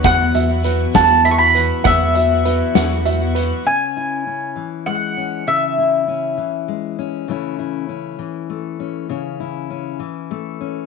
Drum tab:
HH |xxxxxx|xxxxxx|------|------|
SD |---o--|---o--|------|------|
BD |o--o--|o-----|------|------|

HH |------|------|
SD |------|------|
BD |------|------|